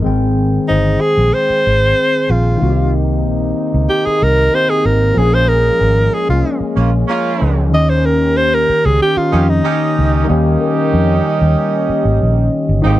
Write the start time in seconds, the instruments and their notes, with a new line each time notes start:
0.00 tine electric piano D#3 G#3, french horn section G#3 C4 G#4
0.04 fingered electric bass G#1, tine electric piano C4 G5
0.68 fingered electric bass G1, alto saxophone D#4, celesta C5
1.01 alto saxophone G#4
1.18 fingered electric bass A#1
1.34 alto saxophone C5
1.50 muted fingered electric bass stroke
1.67 fingered electric bass G#1
2.30 fingered electric bass A#1, alto saxophone F4
2.56 french horn section C3 A#3 D#4, tine electric piano D#3 A#3
2.61 fingered electric bass C2, tine electric piano C4 F#4
2.70 tine electric piano G4
3.26 fingered electric bass A#1
3.74 fingered electric bass C#2
3.89 alto saxophone G4
4.05 alto saxophone G#4, muted fingered electric bass stroke
4.22 fingered electric bass C2, alto saxophone A#4
4.51 tine electric piano D#3 A#3 C4 G4, alto saxophone C5
4.70 alto saxophone G#4
4.85 fingered electric bass G#1, alto saxophone A#4
5.13 fingered electric bass A#1, tine electric piano F3 A#3 C#4, french horn section G#3 C#4
5.18 alto saxophone G#4, tine electric piano G#4
5.34 alto saxophone C5
5.49 alto saxophone A#4
5.81 fingered electric bass G#1
6.14 alto saxophone G#4
6.29 fingered electric bass C2, alto saxophone F4
6.60 muted fingered electric bass stroke
6.76 fingered electric bass A#1, horn section A#3 C#4 F4
7.08 horn section A#3 C#4 F4
7.42 fingered electric bass C#2
7.69 tine electric piano D#3 A#3, french horn section D#3 G4
7.73 fingered electric bass D#2, tine electric piano C#4 G4, alto saxophone D#5
7.90 alto saxophone C5
8.06 alto saxophone A#4
8.37 alto saxophone C5
8.54 alto saxophone A#4
8.70 muted fingered electric bass stroke
8.85 fingered electric bass C#2, alto saxophone G#4
9.02 alto saxophone G4
9.17 alto saxophone F4, muted fingered electric bass stroke
9.31 fingered electric bass F2, tine electric piano D#3 A#3 C#4 G4, horn section C#4 D#4 G4
9.49 alto saxophone D#4
9.64 horn section C#4 D#4 G4
9.99 fingered electric bass C#2
10.24 tine electric piano D#3 G3 A#3
10.28 fingered electric bass D#2, horn section C#4 D#4 G4, french horn section C#4 G4 D#5, tine electric piano C#4 G4
10.60 celesta A#4
10.94 fingered electric bass F2
11.41 fingered electric bass D#2
11.89 muted fingered electric bass stroke
12.05 fingered electric bass G#1
12.22 fingered electric bass A#1
12.69 fingered electric bass G1
12.81 fingered electric bass G#1, tine electric piano D#3 G#3 A#3, french horn section G#3 G#4 C5, horn section C4 D#4 G4
12.86 tine electric piano C4 G5